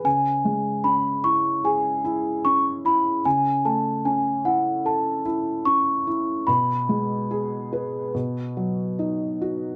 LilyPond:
<<
  \new Staff \with { instrumentName = "Celesta" } { \time 4/4 \key a \lydian \tempo 4 = 75 gis''4 b''8 cis'''8 gis''4 cis'''8 b''8 | gis''8 a''8 gis''8 fis''8 a''4 cis'''4 | b''2. r4 | }
  \new Staff \with { instrumentName = "Felt piano" } { \time 4/4 \key a \lydian cis8 gis8 cis'8 e'8 gis'8 e'8 cis'8 e'8 | cis8 a8 cis'8 e'8 a'8 e'8 cis'8 e'8 | b,8 gis8 gis'8 b'8 b,8 fis8 dis'8 fis'8 | }
>>